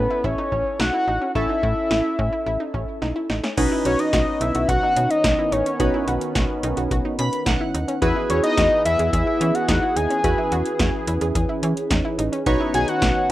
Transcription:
Already playing: C#4 E4 A4 B4
0.10 E4
0.24 A1 E4 C#5, kick
0.38 D#4
0.52 A1 C#4, kick
0.80 B1 D#4 F#5, snare
0.94 E4
1.08 A1 D#4
1.22 C#4
1.35 A1 C#4 E4 A4 E5, kick
1.49 D#4
1.63 A2 E4, kick
1.91 A1 E4, snare
2.19 A2 C#4, kick
2.33 E4
2.46 A1 E4
2.60 D#4
2.74 A1 C#4, kick
3.02 B1 D#4, snare
3.16 E4
3.30 A1 D#4, snare
3.44 C#4, snare
3.57 B1 D#3 B3 C#4 D#4 F#4 B4, kick, closed hi-hat, crash
3.72 E4
3.85 B1 F#4 C#5, closed hi-hat
3.99 D#5, closed hi-hat
4.13 B1 F#4, kick, snare, closed hi-hat
4.41 B1 D#4 E5, closed hi-hat
4.55 B1 F#4, closed hi-hat
4.69 B1 F#4 F#5, kick, closed hi-hat
4.83 D#4
4.96 B2 C#4, closed hi-hat
5.10 D#5, closed hi-hat
5.24 B1 D#4, kick, snare, closed hi-hat
5.39 E4
5.52 A1 D#4 C#5, closed hi-hat
5.66 C#4, closed hi-hat
5.80 B1 C#4 D#4 F#4 B4, kick, closed hi-hat
5.94 E4
6.08 B1 F#4, closed hi-hat
6.21 closed hi-hat
6.35 B1 F#4, kick, snare, closed hi-hat
6.63 B1 D#4, closed hi-hat
6.77 B1 F#4, closed hi-hat
6.91 B1 F#4, kick, closed hi-hat
7.05 D#4
7.19 B2 C#4 B5, closed hi-hat
7.33 closed hi-hat
7.46 B1 D#4 F#5, kick, snare, closed hi-hat
7.61 E4
7.74 D#2 D#4, closed hi-hat
7.88 C#4, closed hi-hat
8.02 E2 E3 B3 E4 F#4 G#4 B4, kick, closed hi-hat
8.16 E4
8.30 E2 F#4 C#5, closed hi-hat
8.44 D#5, closed hi-hat
8.57 E2 F#4, kick, snare, closed hi-hat
8.85 E2 E4 E5, closed hi-hat
8.99 E2 G#4, closed hi-hat
9.13 E2 G#4 E5, kick, closed hi-hat
9.27 E4
9.41 E3 C#4, closed hi-hat
9.55 F#5, closed hi-hat
9.68 E2 D#4, kick, snare, closed hi-hat
9.82 E4
9.96 D#2 D#4 G#5, closed hi-hat
10.10 C#4, closed hi-hat
10.24 E2 C#4 E4 F#4 G#4 B4, kick, closed hi-hat
10.38 E4
10.52 E2 F#4, closed hi-hat
10.66 closed hi-hat
10.79 E2 F#4, kick, snare, closed hi-hat
11.07 E2 E4, closed hi-hat
11.21 E2 G#4, closed hi-hat
11.35 E2 G#4, kick, closed hi-hat
11.49 E4
11.63 E3 C#4, closed hi-hat
11.77 closed hi-hat
11.91 E2 D#4, kick, snare, closed hi-hat
12.05 E4
12.19 A1 D#4, closed hi-hat
12.33 C#4, closed hi-hat
12.46 B1 D#3 B3 D#4 F#4 B4 C#5, kick, closed hi-hat
12.60 E4
12.74 B1 F#4 G#5, closed hi-hat
12.88 F#5, closed hi-hat
13.02 B1 F#4, kick, snare, closed hi-hat

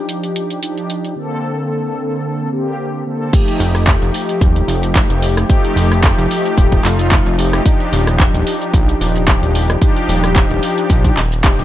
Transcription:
Already playing: F3 D4 D#4 G4
0.09 closed hi-hat
0.24 closed hi-hat
0.36 closed hi-hat
0.50 closed hi-hat
0.62 F3 D4 D#4 G4, closed hi-hat
0.78 closed hi-hat
0.90 closed hi-hat
1.05 closed hi-hat
1.16 D3 A#3 C4 A4
2.52 D3 A#3 C4 G4
3.06 D3 A#3 C4 A4
3.32 F3 A3 D#4 G4, kick, closed hi-hat, crash, shaker
3.48 closed hi-hat
3.60 F1, open hi-hat, shaker
3.75 cross-stick, closed hi-hat, shaker
3.87 kick, clap, closed hi-hat, shaker
4.02 F1, closed hi-hat
4.14 open hi-hat, shaker
4.29 closed hi-hat, shaker
4.41 D#1, kick, closed hi-hat, shaker
4.56 closed hi-hat
4.68 F1, open hi-hat, shaker
4.83 closed hi-hat, shaker
4.95 F3 A3 D#4 G4, kick, clap, closed hi-hat, shaker
5.10 F1, closed hi-hat
5.22 open hi-hat, shaker
5.37 cross-stick, closed hi-hat, shaker
5.49 F3 A3 D#4 G4, kick, closed hi-hat, shaker
5.65 closed hi-hat
5.76 F1, open hi-hat, shaker
5.92 cross-stick, closed hi-hat, shaker
6.04 kick, clap, closed hi-hat, shaker
6.18 F1, closed hi-hat
6.31 open hi-hat, shaker
6.46 closed hi-hat, shaker
6.58 D#1, kick, closed hi-hat, shaker
6.72 kick, closed hi-hat
6.84 F1 F3 A3 D#4 F4, clap, open hi-hat, shaker
6.99 closed hi-hat, shaker
7.12 kick, clap, closed hi-hat, shaker
7.26 F1, closed hi-hat
7.38 F3 A3 D#4 G4, open hi-hat, shaker
7.53 cross-stick, closed hi-hat, shaker
7.65 F3 D4 D#4 G4, kick, closed hi-hat, shaker
7.80 closed hi-hat
7.92 D#1, open hi-hat, shaker
8.07 cross-stick, closed hi-hat, shaker
8.20 kick, clap, closed hi-hat, shaker
8.34 D#1, closed hi-hat
8.47 open hi-hat, shaker
8.62 closed hi-hat, shaker
8.74 A#1, kick, closed hi-hat, shaker
8.89 closed hi-hat
9.00 D#1, open hi-hat, shaker
9.16 closed hi-hat, shaker
9.27 F3 D4 D#4 G4, kick, clap, closed hi-hat, shaker
9.42 D#1, closed hi-hat
9.55 open hi-hat, shaker
9.70 cross-stick, closed hi-hat, shaker
9.81 F3 D4 D#4 G4, kick, closed hi-hat, shaker
9.97 closed hi-hat
10.08 D#1, open hi-hat, shaker
10.24 cross-stick, closed hi-hat, shaker
10.36 kick, clap, closed hi-hat, shaker
10.50 D#1, closed hi-hat
10.63 open hi-hat, shaker
10.78 closed hi-hat, shaker
10.90 A#1, kick, closed hi-hat, shaker
11.04 kick, closed hi-hat
11.17 D#1, clap, open hi-hat, shaker
11.32 closed hi-hat, shaker
11.43 F3 D4 D#4 G4, kick, clap, closed hi-hat, shaker
11.59 D#1, closed hi-hat

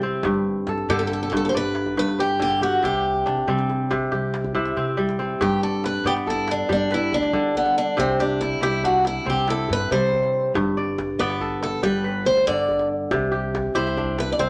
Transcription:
Already playing: C3 G3 E4 G4
0.02 C4, djembe slap, djembe tone
0.23 G1 G2, djembe slap, djembe bass
0.34 djembe tone
0.67 G2 A4, djembe slap
0.78 djembe tone
0.89 G2 D3 G4 A4
0.99 A4, djembe slap
1.07 A4, djembe slap, djembe tone
1.13 A4
1.23 A4
1.30 G2 A4, djembe slap, djembe bass
1.37 A4
1.45 A4
1.49 G1 C5
1.54 B4 D5, djembe tone
1.75 djembe slap
1.86 djembe tone, djembe bass
1.97 G2 B4
2.08 djembe slap
2.18 G2 G4
2.30 djembe tone
2.39 D3 G4, djembe bass
2.51 djembe slap
2.61 F#4 G4, djembe slap, djembe tone
2.83 C2 C3 G4, djembe slap, djembe bass
2.94 djembe tone
3.05 djembe slap
3.26 C3 D4, djembe slap
3.37 djembe tone, djembe bass
3.47 C3 G3 C4
3.58 djembe slap
3.70 djembe tone
3.91 C3, djembe slap, djembe bass
4.12 C2 G4, djembe slap, djembe tone
4.34 djembe slap
4.44 djembe slap, djembe tone, djembe bass
4.55 C3 E4
4.65 djembe slap
4.76 C3 C4
4.87 djembe tone
4.97 G3, djembe bass
5.09 djembe slap
5.19 C4, djembe tone
5.41 G2 G4, djembe slap, djembe tone, djembe bass
5.63 A4 D5
5.84 B4, djembe slap
6.04 G2 B3 G4 D5, djembe tone
6.16 djembe slap
6.27 E4 A4, djembe slap, djembe bass
6.48 D4, djembe slap
6.69 G2 G3 D4, djembe tone, djembe bass
6.91 E4 B4, djembe slap
7.12 D2 D4, djembe bass
7.23 djembe slap
7.33 D3 G3, djembe tone
7.55 B3, djembe bass
7.66 djembe slap
7.78 D4
7.97 C2 C3 C4, djembe slap, djembe tone, djembe bass
8.20 D4 G4
8.41 E4, djembe slap, djembe bass
8.61 C2 E4 G4, djembe tone
8.73 djembe slap
8.83 D4 F#4, djembe slap, djembe bass
9.05 E4, djembe slap
9.25 C2 C4, djembe tone, djembe bass
9.30 G4
9.48 E4 A4, djembe slap
9.69 G2, djembe bass
9.73 B4
9.80 djembe slap
9.91 C3 G3 C5, djembe tone
10.12 djembe bass
10.23 djembe slap
10.54 G1 G2, djembe slap, djembe tone, djembe bass
10.77 D5
10.98 djembe slap, djembe bass
11.19 G1 B3 B4 D5, djembe tone
11.30 djembe slap
11.41 A4, djembe slap, djembe bass
11.63 A4, djembe slap
11.83 G1 G3 B4, djembe tone, djembe bass
12.04 B4
12.25 D2 C5, djembe bass
12.37 djembe slap
12.47 G2 D3 D5, djembe tone
12.69 djembe bass
12.79 djembe slap
13.11 C2 C3, djembe slap, djembe tone, djembe bass
13.32 G4
13.55 djembe slap, djembe bass
13.75 C2 E4 G4 C5, djembe tone
13.87 djembe slap
13.97 D4, djembe slap, djembe bass
14.18 B4, djembe slap
14.32 D5
14.39 C2 C4 C5, djembe tone, djembe bass

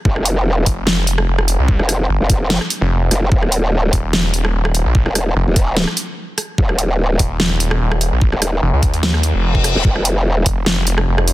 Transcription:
0.05 F1, kick
0.16 cross-stick
0.26 closed hi-hat
0.47 E1
0.66 F1, kick, closed hi-hat
0.87 snare
1.07 closed hi-hat
1.18 cross-stick
1.28 F1
1.39 cross-stick
1.48 closed hi-hat
1.59 C2
1.68 kick
1.79 F1, cross-stick
1.89 cross-stick, closed hi-hat
2.09 G1
2.20 F1
2.30 kick, closed hi-hat
2.50 snare
2.61 cross-stick
2.70 closed hi-hat
2.81 F1
3.11 F1, cross-stick, closed hi-hat
3.32 D#1, kick
3.43 cross-stick
3.52 closed hi-hat
3.74 D1
3.93 D#1, kick, closed hi-hat
4.13 snare
4.34 closed hi-hat
4.45 cross-stick
4.54 D#1
4.65 cross-stick
4.75 closed hi-hat
4.85 A#1
4.95 kick
5.06 D#1, cross-stick
5.15 cross-stick, closed hi-hat
5.36 F1
5.47 D#1
5.56 kick, closed hi-hat
5.77 snare
5.87 cross-stick
5.97 closed hi-hat
6.38 cross-stick, closed hi-hat
6.58 D#1, kick
6.69 cross-stick
6.79 closed hi-hat
7.00 D1
7.19 D#1, kick, closed hi-hat
7.40 snare
7.60 closed hi-hat
7.71 cross-stick
7.81 D#1
7.92 cross-stick
8.01 closed hi-hat
8.12 A#1
8.21 kick
8.32 D#1, cross-stick
8.42 cross-stick, closed hi-hat
8.62 F1
8.73 C#2
8.83 kick, closed hi-hat
8.94 D#2, closed hi-hat
9.03 snare, reverse cymbal
9.14 cross-stick
9.23 closed hi-hat
9.35 F1
9.55 kick
9.64 cross-stick, closed hi-hat
9.75 D#1
9.85 F1, kick
9.96 cross-stick
10.05 closed hi-hat
10.27 E1
10.46 F1, kick, closed hi-hat
10.66 snare
10.87 closed hi-hat
10.98 cross-stick
11.07 F1
11.18 cross-stick
11.28 closed hi-hat

